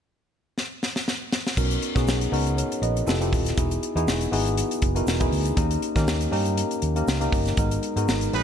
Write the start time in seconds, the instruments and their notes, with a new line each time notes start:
0.58 snare
0.83 snare
0.96 snare
1.08 snare
1.33 snare
1.47 snare
1.57 fingered electric bass B1, tine electric piano B3 C#4 D#4 F#4 A#4, kick, crash, shaker
1.71 closed hi-hat, shaker
1.82 closed hi-hat
1.95 fingered electric bass B2, tine electric piano B3 C#4 D#4 F#4 G#4, kick, snare, closed hi-hat, shaker
2.07 fingered electric bass B1, snare, shaker
2.21 closed hi-hat, shaker
2.32 fingered electric bass C#2, tine electric piano B3 C#4 D#4 F#4 A#4, open hi-hat
2.46 closed hi-hat, shaker
2.57 tine electric piano A#4 C#5, closed hi-hat, shaker
2.72 closed hi-hat, shaker
2.82 fingered electric bass A#1, tine electric piano B4 D#5, closed hi-hat
2.97 closed hi-hat, shaker
3.06 fingered electric bass F1, tine electric piano C4 E4 F4 G4 A4, snare, shaker
3.20 tine electric piano C4 E4 F4 G4 A4, closed hi-hat, shaker
3.33 fingered electric bass D#1, kick, open hi-hat, shaker
3.46 snare, closed hi-hat, shaker
3.57 fingered electric bass E1, tine electric piano B3 D#4 E4 F#4 G#4, kick, closed hi-hat, shaker
3.71 closed hi-hat, shaker
3.83 closed hi-hat
3.95 fingered electric bass E2, tine electric piano B3 D#4 E4 F#4 G#4, closed hi-hat, shaker
4.07 fingered electric bass E1, snare, shaker
4.21 closed hi-hat, shaker
4.32 fingered electric bass G#1, tine electric piano B3 D#4 E4 F#4 G#4, open hi-hat
4.46 closed hi-hat, shaker
4.57 closed hi-hat, shaker
4.71 closed hi-hat, shaker
4.82 fingered electric bass F#1, kick, closed hi-hat
4.95 tine electric piano B3 D#4 E4 F#4 A#4, closed hi-hat, shaker
5.07 fingered electric bass E1, snare, shaker
5.20 tine electric piano B3 D#4 E4 F#4 G#4, kick, closed hi-hat, shaker
5.32 fingered electric bass D2, open hi-hat, shaker
5.45 closed hi-hat, shaker
5.56 fingered electric bass D#2, tine electric piano A#3 C#4 D#4 G4 A#4, kick, closed hi-hat, shaker
5.71 closed hi-hat, shaker
5.82 closed hi-hat
5.96 fingered electric bass D#3, tine electric piano A#3 C#4 D#4 G4 A#4, kick, snare, closed hi-hat, shaker
6.07 fingered electric bass D#2, snare, shaker
6.20 closed hi-hat, shaker
6.31 fingered electric bass G2, tine electric piano A#3 C#4 D#4 G4 A#4, open hi-hat
6.45 closed hi-hat, shaker
6.57 closed hi-hat, shaker
6.71 closed hi-hat, shaker
6.82 fingered electric bass D#2, closed hi-hat
6.96 tine electric piano A#3 C#4 D#4 G4 A#4, closed hi-hat, shaker
7.07 fingered electric bass C#2, snare, shaker
7.20 tine electric piano A#3 C#4 D#4 G4 A#4, closed hi-hat, shaker
7.32 fingered electric bass G1, kick, open hi-hat, shaker
7.46 snare, closed hi-hat, shaker
7.57 fingered electric bass G#1, tine electric piano G#3 B3 D#4 F#4 A#4, kick, closed hi-hat, shaker
7.71 closed hi-hat, shaker
7.83 closed hi-hat
7.96 fingered electric bass G#2, tine electric piano G#3 B3 D#4 F#4 A#4, closed hi-hat, shaker
8.08 fingered electric bass G#1, snare, shaker
8.21 closed hi-hat, shaker
8.33 fingered electric bass A#1, horn section F#3 D#4 B4, tine electric piano G#3 B3 D#4 F#4 G#4, open hi-hat